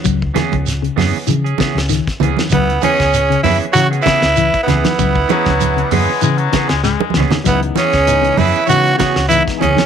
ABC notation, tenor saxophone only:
X:1
M:4/4
L:1/8
Q:"Swing 16ths" 1/4=97
K:C#m
V:1 name="Tenor saxophone"
z8 | B, C2 E F E2 B,- | B,6 z2 | B, C2 E F F E C |]